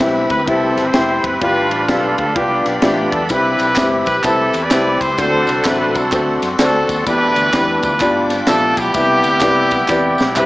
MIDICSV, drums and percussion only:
0, 0, Header, 1, 2, 480
1, 0, Start_track
1, 0, Key_signature, 0, "major"
1, 0, Tempo, 470958
1, 1442, Time_signature, 4, 2, 24, 8
1, 10658, End_track
2, 0, Start_track
2, 0, Title_t, "Drums"
2, 0, Note_on_c, 9, 36, 95
2, 5, Note_on_c, 9, 53, 88
2, 6, Note_on_c, 9, 38, 120
2, 102, Note_off_c, 9, 36, 0
2, 107, Note_off_c, 9, 53, 0
2, 108, Note_off_c, 9, 38, 0
2, 304, Note_on_c, 9, 53, 54
2, 309, Note_on_c, 9, 36, 87
2, 312, Note_on_c, 9, 38, 34
2, 406, Note_off_c, 9, 53, 0
2, 411, Note_off_c, 9, 36, 0
2, 414, Note_off_c, 9, 38, 0
2, 484, Note_on_c, 9, 36, 122
2, 485, Note_on_c, 9, 53, 75
2, 586, Note_off_c, 9, 36, 0
2, 587, Note_off_c, 9, 53, 0
2, 787, Note_on_c, 9, 38, 37
2, 790, Note_on_c, 9, 53, 65
2, 889, Note_off_c, 9, 38, 0
2, 892, Note_off_c, 9, 53, 0
2, 953, Note_on_c, 9, 53, 82
2, 957, Note_on_c, 9, 38, 115
2, 1055, Note_off_c, 9, 53, 0
2, 1059, Note_off_c, 9, 38, 0
2, 1264, Note_on_c, 9, 36, 94
2, 1268, Note_on_c, 9, 53, 58
2, 1366, Note_off_c, 9, 36, 0
2, 1370, Note_off_c, 9, 53, 0
2, 1441, Note_on_c, 9, 53, 83
2, 1443, Note_on_c, 9, 36, 115
2, 1543, Note_off_c, 9, 53, 0
2, 1545, Note_off_c, 9, 36, 0
2, 1745, Note_on_c, 9, 53, 67
2, 1847, Note_off_c, 9, 53, 0
2, 1921, Note_on_c, 9, 36, 95
2, 1925, Note_on_c, 9, 53, 78
2, 1926, Note_on_c, 9, 38, 127
2, 2023, Note_off_c, 9, 36, 0
2, 2027, Note_off_c, 9, 53, 0
2, 2028, Note_off_c, 9, 38, 0
2, 2222, Note_on_c, 9, 53, 51
2, 2229, Note_on_c, 9, 36, 82
2, 2324, Note_off_c, 9, 53, 0
2, 2331, Note_off_c, 9, 36, 0
2, 2403, Note_on_c, 9, 53, 74
2, 2404, Note_on_c, 9, 36, 125
2, 2505, Note_off_c, 9, 53, 0
2, 2506, Note_off_c, 9, 36, 0
2, 2705, Note_on_c, 9, 38, 37
2, 2708, Note_on_c, 9, 53, 58
2, 2807, Note_off_c, 9, 38, 0
2, 2810, Note_off_c, 9, 53, 0
2, 2874, Note_on_c, 9, 53, 82
2, 2878, Note_on_c, 9, 38, 127
2, 2976, Note_off_c, 9, 53, 0
2, 2980, Note_off_c, 9, 38, 0
2, 3184, Note_on_c, 9, 36, 98
2, 3190, Note_on_c, 9, 53, 61
2, 3286, Note_off_c, 9, 36, 0
2, 3292, Note_off_c, 9, 53, 0
2, 3353, Note_on_c, 9, 54, 78
2, 3363, Note_on_c, 9, 36, 114
2, 3365, Note_on_c, 9, 53, 89
2, 3455, Note_off_c, 9, 54, 0
2, 3465, Note_off_c, 9, 36, 0
2, 3467, Note_off_c, 9, 53, 0
2, 3657, Note_on_c, 9, 54, 60
2, 3665, Note_on_c, 9, 53, 64
2, 3759, Note_off_c, 9, 54, 0
2, 3767, Note_off_c, 9, 53, 0
2, 3827, Note_on_c, 9, 39, 102
2, 3827, Note_on_c, 9, 54, 104
2, 3840, Note_on_c, 9, 36, 105
2, 3846, Note_on_c, 9, 53, 81
2, 3847, Note_on_c, 9, 38, 120
2, 3929, Note_off_c, 9, 39, 0
2, 3929, Note_off_c, 9, 54, 0
2, 3942, Note_off_c, 9, 36, 0
2, 3948, Note_off_c, 9, 53, 0
2, 3949, Note_off_c, 9, 38, 0
2, 4138, Note_on_c, 9, 54, 54
2, 4147, Note_on_c, 9, 53, 49
2, 4149, Note_on_c, 9, 36, 86
2, 4154, Note_on_c, 9, 38, 31
2, 4239, Note_off_c, 9, 54, 0
2, 4249, Note_off_c, 9, 53, 0
2, 4251, Note_off_c, 9, 36, 0
2, 4256, Note_off_c, 9, 38, 0
2, 4315, Note_on_c, 9, 39, 74
2, 4315, Note_on_c, 9, 54, 75
2, 4323, Note_on_c, 9, 53, 76
2, 4324, Note_on_c, 9, 36, 125
2, 4417, Note_off_c, 9, 39, 0
2, 4417, Note_off_c, 9, 54, 0
2, 4425, Note_off_c, 9, 53, 0
2, 4426, Note_off_c, 9, 36, 0
2, 4621, Note_on_c, 9, 54, 57
2, 4628, Note_on_c, 9, 53, 65
2, 4723, Note_off_c, 9, 54, 0
2, 4730, Note_off_c, 9, 53, 0
2, 4796, Note_on_c, 9, 53, 87
2, 4798, Note_on_c, 9, 39, 104
2, 4798, Note_on_c, 9, 54, 106
2, 4800, Note_on_c, 9, 38, 127
2, 4898, Note_off_c, 9, 53, 0
2, 4900, Note_off_c, 9, 39, 0
2, 4900, Note_off_c, 9, 54, 0
2, 4902, Note_off_c, 9, 38, 0
2, 5105, Note_on_c, 9, 36, 89
2, 5108, Note_on_c, 9, 54, 59
2, 5115, Note_on_c, 9, 53, 63
2, 5207, Note_off_c, 9, 36, 0
2, 5210, Note_off_c, 9, 54, 0
2, 5217, Note_off_c, 9, 53, 0
2, 5277, Note_on_c, 9, 54, 82
2, 5285, Note_on_c, 9, 36, 127
2, 5291, Note_on_c, 9, 53, 85
2, 5379, Note_off_c, 9, 54, 0
2, 5387, Note_off_c, 9, 36, 0
2, 5393, Note_off_c, 9, 53, 0
2, 5574, Note_on_c, 9, 54, 59
2, 5594, Note_on_c, 9, 53, 67
2, 5676, Note_off_c, 9, 54, 0
2, 5696, Note_off_c, 9, 53, 0
2, 5752, Note_on_c, 9, 39, 92
2, 5752, Note_on_c, 9, 54, 95
2, 5762, Note_on_c, 9, 36, 97
2, 5771, Note_on_c, 9, 53, 79
2, 5772, Note_on_c, 9, 38, 123
2, 5854, Note_off_c, 9, 39, 0
2, 5854, Note_off_c, 9, 54, 0
2, 5864, Note_off_c, 9, 36, 0
2, 5873, Note_off_c, 9, 53, 0
2, 5874, Note_off_c, 9, 38, 0
2, 6061, Note_on_c, 9, 54, 50
2, 6068, Note_on_c, 9, 53, 53
2, 6069, Note_on_c, 9, 36, 83
2, 6163, Note_off_c, 9, 54, 0
2, 6170, Note_off_c, 9, 53, 0
2, 6171, Note_off_c, 9, 36, 0
2, 6235, Note_on_c, 9, 39, 74
2, 6235, Note_on_c, 9, 54, 72
2, 6244, Note_on_c, 9, 36, 127
2, 6248, Note_on_c, 9, 53, 76
2, 6337, Note_off_c, 9, 39, 0
2, 6337, Note_off_c, 9, 54, 0
2, 6346, Note_off_c, 9, 36, 0
2, 6350, Note_off_c, 9, 53, 0
2, 6544, Note_on_c, 9, 54, 61
2, 6546, Note_on_c, 9, 38, 36
2, 6549, Note_on_c, 9, 53, 69
2, 6646, Note_off_c, 9, 54, 0
2, 6648, Note_off_c, 9, 38, 0
2, 6651, Note_off_c, 9, 53, 0
2, 6713, Note_on_c, 9, 53, 86
2, 6717, Note_on_c, 9, 38, 120
2, 6723, Note_on_c, 9, 39, 97
2, 6723, Note_on_c, 9, 54, 105
2, 6815, Note_off_c, 9, 53, 0
2, 6819, Note_off_c, 9, 38, 0
2, 6825, Note_off_c, 9, 39, 0
2, 6825, Note_off_c, 9, 54, 0
2, 7024, Note_on_c, 9, 36, 93
2, 7027, Note_on_c, 9, 53, 65
2, 7035, Note_on_c, 9, 54, 64
2, 7126, Note_off_c, 9, 36, 0
2, 7129, Note_off_c, 9, 53, 0
2, 7137, Note_off_c, 9, 54, 0
2, 7200, Note_on_c, 9, 54, 87
2, 7202, Note_on_c, 9, 36, 127
2, 7203, Note_on_c, 9, 53, 82
2, 7302, Note_off_c, 9, 54, 0
2, 7304, Note_off_c, 9, 36, 0
2, 7305, Note_off_c, 9, 53, 0
2, 7502, Note_on_c, 9, 53, 66
2, 7502, Note_on_c, 9, 54, 59
2, 7604, Note_off_c, 9, 53, 0
2, 7604, Note_off_c, 9, 54, 0
2, 7678, Note_on_c, 9, 36, 104
2, 7679, Note_on_c, 9, 39, 99
2, 7679, Note_on_c, 9, 54, 96
2, 7680, Note_on_c, 9, 53, 76
2, 7681, Note_on_c, 9, 38, 116
2, 7779, Note_off_c, 9, 36, 0
2, 7781, Note_off_c, 9, 39, 0
2, 7781, Note_off_c, 9, 54, 0
2, 7782, Note_off_c, 9, 53, 0
2, 7783, Note_off_c, 9, 38, 0
2, 7977, Note_on_c, 9, 53, 51
2, 7984, Note_on_c, 9, 54, 58
2, 7985, Note_on_c, 9, 36, 95
2, 8079, Note_off_c, 9, 53, 0
2, 8086, Note_off_c, 9, 54, 0
2, 8087, Note_off_c, 9, 36, 0
2, 8152, Note_on_c, 9, 39, 79
2, 8152, Note_on_c, 9, 54, 75
2, 8156, Note_on_c, 9, 53, 74
2, 8160, Note_on_c, 9, 36, 119
2, 8254, Note_off_c, 9, 39, 0
2, 8254, Note_off_c, 9, 54, 0
2, 8258, Note_off_c, 9, 53, 0
2, 8262, Note_off_c, 9, 36, 0
2, 8459, Note_on_c, 9, 38, 38
2, 8460, Note_on_c, 9, 54, 57
2, 8462, Note_on_c, 9, 53, 67
2, 8561, Note_off_c, 9, 38, 0
2, 8562, Note_off_c, 9, 54, 0
2, 8564, Note_off_c, 9, 53, 0
2, 8629, Note_on_c, 9, 53, 85
2, 8633, Note_on_c, 9, 38, 126
2, 8637, Note_on_c, 9, 39, 101
2, 8637, Note_on_c, 9, 54, 101
2, 8731, Note_off_c, 9, 53, 0
2, 8735, Note_off_c, 9, 38, 0
2, 8739, Note_off_c, 9, 39, 0
2, 8739, Note_off_c, 9, 54, 0
2, 8940, Note_on_c, 9, 54, 62
2, 8941, Note_on_c, 9, 36, 90
2, 8943, Note_on_c, 9, 53, 61
2, 9042, Note_off_c, 9, 54, 0
2, 9043, Note_off_c, 9, 36, 0
2, 9045, Note_off_c, 9, 53, 0
2, 9112, Note_on_c, 9, 53, 82
2, 9115, Note_on_c, 9, 54, 82
2, 9119, Note_on_c, 9, 36, 126
2, 9214, Note_off_c, 9, 53, 0
2, 9217, Note_off_c, 9, 54, 0
2, 9220, Note_off_c, 9, 36, 0
2, 9413, Note_on_c, 9, 54, 60
2, 9417, Note_on_c, 9, 53, 59
2, 9515, Note_off_c, 9, 54, 0
2, 9519, Note_off_c, 9, 53, 0
2, 9584, Note_on_c, 9, 39, 93
2, 9584, Note_on_c, 9, 54, 92
2, 9598, Note_on_c, 9, 36, 105
2, 9598, Note_on_c, 9, 53, 82
2, 9599, Note_on_c, 9, 38, 127
2, 9686, Note_off_c, 9, 39, 0
2, 9686, Note_off_c, 9, 54, 0
2, 9700, Note_off_c, 9, 36, 0
2, 9700, Note_off_c, 9, 38, 0
2, 9700, Note_off_c, 9, 53, 0
2, 9896, Note_on_c, 9, 54, 53
2, 9898, Note_on_c, 9, 53, 53
2, 9905, Note_on_c, 9, 36, 89
2, 9905, Note_on_c, 9, 38, 33
2, 9998, Note_off_c, 9, 54, 0
2, 10000, Note_off_c, 9, 53, 0
2, 10007, Note_off_c, 9, 36, 0
2, 10007, Note_off_c, 9, 38, 0
2, 10070, Note_on_c, 9, 39, 75
2, 10070, Note_on_c, 9, 54, 78
2, 10078, Note_on_c, 9, 38, 61
2, 10082, Note_on_c, 9, 36, 123
2, 10172, Note_off_c, 9, 39, 0
2, 10172, Note_off_c, 9, 54, 0
2, 10180, Note_off_c, 9, 38, 0
2, 10184, Note_off_c, 9, 36, 0
2, 10376, Note_on_c, 9, 54, 59
2, 10402, Note_on_c, 9, 38, 79
2, 10478, Note_off_c, 9, 54, 0
2, 10504, Note_off_c, 9, 38, 0
2, 10557, Note_on_c, 9, 39, 100
2, 10557, Note_on_c, 9, 54, 106
2, 10565, Note_on_c, 9, 45, 83
2, 10658, Note_off_c, 9, 39, 0
2, 10658, Note_off_c, 9, 45, 0
2, 10658, Note_off_c, 9, 54, 0
2, 10658, End_track
0, 0, End_of_file